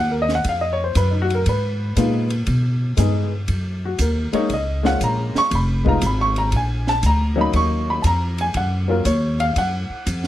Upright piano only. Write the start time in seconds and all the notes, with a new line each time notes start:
Already playing: F#5
0.11 A#4
0.22 D#5
0.35 F#5
0.49 F5
0.61 D#5
0.73 C#5
0.84 C5
0.97 B4
1.11 D#4
1.22 F#4
1.35 A#4
1.49 B4
1.97 G#3 B3 D#4 F4
2.97 G#3 B3 D#4 G#4
3.85 F#4
4.01 A#4
4.33 G#3 A#3 C#4 D#4 C#5
4.54 D#5
4.83 G#3 A#3 C#4 F4 F#5
5.04 A#5
5.38 C#6
5.55 B5
5.85 G#3 B3 D#4 F4 A#5
6.07 B5
6.21 C#6
6.38 A#5
6.56 G#5
6.89 A5
7.06 A#5
7.36 F#3 A#3 C#4 D#4
7.41 B5
7.56 C#6
7.90 B5
8.02 A5
8.07 A#5
8.41 G#5
8.57 F#5
8.88 F#3 A#3 C#4 F4 A#4
9.06 C#5
9.40 F5
9.53 F5
9.58 F#5